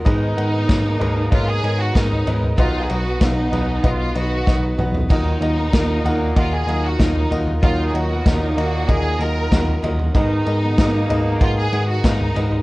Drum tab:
CC |----------------|----------------|x---------------|----------------|
RD |x-x-x-x-x-x-x-x-|x-x-x-x-x-x-----|--x-x-x-x-x-x-x-|x-x-x-x-x-x-x-x-|
SD |----o-------o---|----o-------o---|----o-------o---|----o-------o---|
T2 |----------------|--------------o-|----------------|----------------|
FT |------o------ooo|------o--------o|------o------ooo|-------------ooo|
BD |o---o---o---o---|o---o---o---o---|o---o---o---o---|o---o---o---o---|

CC |----------------|
RD |x-x-x-x-x-x-x-x-|
SD |----o-------o---|
T2 |----------------|
FT |------o------ooo|
BD |o---o---o---o---|